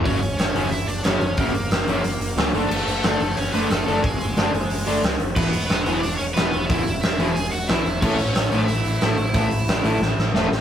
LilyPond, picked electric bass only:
\new Staff \with { instrumentName = "Picked electric bass" } { \clef bass \time 4/4 \key fis \minor \tempo 4 = 181 fis,,8 fis,,8 fis,,8 fis,,8 fis,,8 fis,,8 fis,,8 fis,,8 | fis,,8 fis,,8 fis,,8 fis,,8 fis,,8 fis,,8 cis,8 fis,,8 | fis,,8 fis,,8 fis,,8 fis,,8 fis,,8 fis,,8 fis,,8 fis,,8 | fis,,8 fis,,8 fis,,8 fis,,8 fis,,8 fis,,8 cis,8 fis,,8 |
e,,8 e,,8 e,,8 e,,8 e,,8 e,,8 e,,8 e,,8 | e,,8 e,,8 e,,8 e,,8 e,,8 e,,8 b,,8 e,,8 | a,,8 a,,8 a,,8 a,,8 a,,8 a,,8 a,,8 a,,8 | a,,8 a,,8 a,,8 a,,8 a,,8 a,,8 e,,8 a,,8 | }